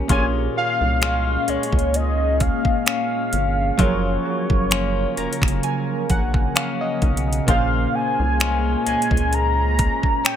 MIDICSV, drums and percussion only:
0, 0, Header, 1, 2, 480
1, 0, Start_track
1, 0, Key_signature, -5, "minor"
1, 0, Tempo, 923077
1, 49, Time_signature, 4, 2, 24, 8
1, 5388, End_track
2, 0, Start_track
2, 0, Title_t, "Drums"
2, 48, Note_on_c, 9, 42, 70
2, 49, Note_on_c, 9, 36, 104
2, 100, Note_off_c, 9, 42, 0
2, 101, Note_off_c, 9, 36, 0
2, 528, Note_on_c, 9, 42, 55
2, 534, Note_on_c, 9, 26, 117
2, 580, Note_off_c, 9, 42, 0
2, 586, Note_off_c, 9, 26, 0
2, 769, Note_on_c, 9, 42, 70
2, 821, Note_off_c, 9, 42, 0
2, 849, Note_on_c, 9, 42, 57
2, 897, Note_on_c, 9, 36, 84
2, 901, Note_off_c, 9, 42, 0
2, 929, Note_on_c, 9, 42, 38
2, 949, Note_off_c, 9, 36, 0
2, 981, Note_off_c, 9, 42, 0
2, 1009, Note_on_c, 9, 42, 67
2, 1061, Note_off_c, 9, 42, 0
2, 1250, Note_on_c, 9, 42, 63
2, 1252, Note_on_c, 9, 36, 84
2, 1302, Note_off_c, 9, 42, 0
2, 1304, Note_off_c, 9, 36, 0
2, 1377, Note_on_c, 9, 36, 87
2, 1429, Note_off_c, 9, 36, 0
2, 1489, Note_on_c, 9, 42, 63
2, 1495, Note_on_c, 9, 26, 99
2, 1541, Note_off_c, 9, 42, 0
2, 1547, Note_off_c, 9, 26, 0
2, 1730, Note_on_c, 9, 42, 62
2, 1782, Note_off_c, 9, 42, 0
2, 1969, Note_on_c, 9, 42, 71
2, 1970, Note_on_c, 9, 36, 105
2, 2021, Note_off_c, 9, 42, 0
2, 2022, Note_off_c, 9, 36, 0
2, 2339, Note_on_c, 9, 36, 99
2, 2391, Note_off_c, 9, 36, 0
2, 2449, Note_on_c, 9, 42, 58
2, 2454, Note_on_c, 9, 26, 112
2, 2501, Note_off_c, 9, 42, 0
2, 2506, Note_off_c, 9, 26, 0
2, 2690, Note_on_c, 9, 42, 57
2, 2742, Note_off_c, 9, 42, 0
2, 2769, Note_on_c, 9, 42, 60
2, 2817, Note_on_c, 9, 36, 85
2, 2821, Note_off_c, 9, 42, 0
2, 2824, Note_on_c, 9, 26, 67
2, 2849, Note_on_c, 9, 42, 53
2, 2869, Note_off_c, 9, 36, 0
2, 2876, Note_off_c, 9, 26, 0
2, 2901, Note_off_c, 9, 42, 0
2, 2929, Note_on_c, 9, 42, 66
2, 2981, Note_off_c, 9, 42, 0
2, 3169, Note_on_c, 9, 42, 62
2, 3171, Note_on_c, 9, 36, 89
2, 3221, Note_off_c, 9, 42, 0
2, 3223, Note_off_c, 9, 36, 0
2, 3297, Note_on_c, 9, 36, 87
2, 3349, Note_off_c, 9, 36, 0
2, 3409, Note_on_c, 9, 42, 58
2, 3415, Note_on_c, 9, 26, 105
2, 3461, Note_off_c, 9, 42, 0
2, 3467, Note_off_c, 9, 26, 0
2, 3649, Note_on_c, 9, 42, 38
2, 3650, Note_on_c, 9, 36, 89
2, 3701, Note_off_c, 9, 42, 0
2, 3702, Note_off_c, 9, 36, 0
2, 3730, Note_on_c, 9, 42, 49
2, 3782, Note_off_c, 9, 42, 0
2, 3809, Note_on_c, 9, 42, 67
2, 3861, Note_off_c, 9, 42, 0
2, 3889, Note_on_c, 9, 36, 101
2, 3889, Note_on_c, 9, 42, 73
2, 3941, Note_off_c, 9, 36, 0
2, 3941, Note_off_c, 9, 42, 0
2, 4369, Note_on_c, 9, 42, 56
2, 4374, Note_on_c, 9, 26, 111
2, 4421, Note_off_c, 9, 42, 0
2, 4426, Note_off_c, 9, 26, 0
2, 4610, Note_on_c, 9, 42, 70
2, 4662, Note_off_c, 9, 42, 0
2, 4690, Note_on_c, 9, 42, 55
2, 4737, Note_on_c, 9, 36, 83
2, 4742, Note_off_c, 9, 42, 0
2, 4770, Note_on_c, 9, 42, 41
2, 4789, Note_off_c, 9, 36, 0
2, 4822, Note_off_c, 9, 42, 0
2, 4850, Note_on_c, 9, 42, 69
2, 4902, Note_off_c, 9, 42, 0
2, 5089, Note_on_c, 9, 42, 64
2, 5091, Note_on_c, 9, 36, 90
2, 5141, Note_off_c, 9, 42, 0
2, 5143, Note_off_c, 9, 36, 0
2, 5217, Note_on_c, 9, 36, 85
2, 5269, Note_off_c, 9, 36, 0
2, 5329, Note_on_c, 9, 42, 60
2, 5335, Note_on_c, 9, 26, 107
2, 5381, Note_off_c, 9, 42, 0
2, 5387, Note_off_c, 9, 26, 0
2, 5388, End_track
0, 0, End_of_file